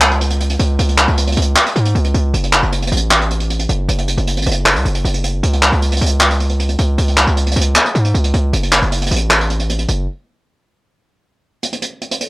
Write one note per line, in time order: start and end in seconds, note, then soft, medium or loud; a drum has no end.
0.00 0.56 C#2 loud
0.00 clap loud
0.00 closed hi-hat medium
0.11 closed hi-hat medium
0.21 closed hi-hat medium
0.30 closed hi-hat medium
0.40 closed hi-hat medium
0.50 closed hi-hat medium
0.59 0.78 C#2 loud
0.59 closed hi-hat medium
0.79 1.07 C#2 loud
0.79 closed hi-hat medium
0.89 closed hi-hat medium
0.98 clap medium
0.98 closed hi-hat medium
1.08 1.36 C#2 loud
1.08 closed hi-hat medium
1.17 closed hi-hat medium
1.27 closed hi-hat medium
1.32 closed hi-hat medium
1.37 1.56 C#2 loud
1.37 closed hi-hat medium
1.37 open hi-hat medium
1.42 closed hi-hat medium
1.56 clap loud
1.56 closed hi-hat medium
1.66 closed hi-hat medium
1.76 1.94 G#2 loud
1.76 closed hi-hat medium
1.85 closed hi-hat medium
1.95 2.14 C#2 loud
1.95 closed hi-hat medium
2.04 closed hi-hat medium
2.14 2.33 C#2 loud
2.14 closed hi-hat medium
2.34 2.62 F#1 loud
2.34 closed hi-hat medium
2.44 closed hi-hat medium
2.53 clap medium
2.53 closed hi-hat medium
2.63 2.91 F#1 loud
2.63 closed hi-hat medium
2.72 closed hi-hat medium
2.82 closed hi-hat medium
2.87 closed hi-hat medium
2.92 3.66 A1 loud
2.92 closed hi-hat medium
2.97 closed hi-hat medium
3.11 clap loud
3.11 closed hi-hat medium
3.21 closed hi-hat medium
3.30 closed hi-hat medium
3.40 closed hi-hat medium
3.50 closed hi-hat medium
3.59 closed hi-hat medium
3.69 3.88 F#1 loud
3.69 closed hi-hat medium
3.88 4.16 F#1 loud
3.88 closed hi-hat medium
3.98 closed hi-hat medium
4.08 closed hi-hat medium
4.17 4.38 F#1 loud
4.17 closed hi-hat medium
4.27 closed hi-hat medium
4.37 4.46 G#1 loud
4.37 closed hi-hat medium
4.42 closed hi-hat medium
4.46 4.77 F#1 loud
4.46 closed hi-hat medium
4.46 open hi-hat medium
4.51 closed hi-hat medium
4.66 clap loud
4.66 closed hi-hat medium
4.76 4.85 C#2 loud
4.76 closed hi-hat medium
4.85 5.04 F#1 loud
4.85 closed hi-hat medium
4.95 closed hi-hat medium
5.05 5.42 F#1 loud
5.05 closed hi-hat medium
5.14 closed hi-hat medium
5.24 closed hi-hat medium
5.43 5.71 C#2 loud
5.43 closed hi-hat medium
5.53 closed hi-hat medium
5.63 clap loud
5.63 closed hi-hat medium
5.72 6.00 C#2 loud
5.72 closed hi-hat medium
5.82 closed hi-hat medium
5.92 closed hi-hat medium
5.97 closed hi-hat medium
6.01 6.76 C#2 loud
6.01 closed hi-hat medium
6.06 closed hi-hat medium
6.21 clap loud
6.21 closed hi-hat medium
6.31 closed hi-hat medium
6.40 closed hi-hat medium
6.50 closed hi-hat medium
6.60 closed hi-hat medium
6.69 closed hi-hat medium
6.79 6.97 C#2 loud
6.79 closed hi-hat medium
6.98 7.26 C#2 loud
6.98 closed hi-hat medium
7.08 closed hi-hat medium
7.17 clap loud
7.17 closed hi-hat medium
7.27 7.55 C#2 loud
7.27 closed hi-hat medium
7.37 closed hi-hat medium
7.47 closed hi-hat medium
7.51 closed hi-hat medium
7.56 7.75 C#2 loud
7.56 closed hi-hat medium
7.56 open hi-hat medium
7.61 closed hi-hat medium
7.76 clap loud
7.76 closed hi-hat medium
7.86 closed hi-hat medium
7.95 8.14 G#2 loud
7.95 closed hi-hat medium
8.04 closed hi-hat medium
8.14 8.33 C#2 loud
8.14 closed hi-hat medium
8.24 closed hi-hat medium
8.34 8.52 C#2 loud
8.34 closed hi-hat medium
8.53 8.81 F#1 loud
8.53 closed hi-hat medium
8.63 closed hi-hat medium
8.72 clap loud
8.72 closed hi-hat medium
8.82 9.10 F#1 loud
8.82 closed hi-hat medium
8.92 closed hi-hat medium
9.02 closed hi-hat medium
9.06 closed hi-hat medium
9.11 9.85 A1 loud
9.11 closed hi-hat medium
9.16 closed hi-hat medium
9.31 clap loud
9.31 closed hi-hat medium
9.41 closed hi-hat medium
9.50 closed hi-hat medium
9.59 closed hi-hat medium
9.69 closed hi-hat medium
9.79 closed hi-hat medium
9.88 10.07 F#1 loud
9.88 closed hi-hat medium
11.63 closed hi-hat medium
11.73 closed hi-hat medium
11.82 closed hi-hat medium
12.02 closed hi-hat soft
12.11 closed hi-hat medium
12.21 closed hi-hat medium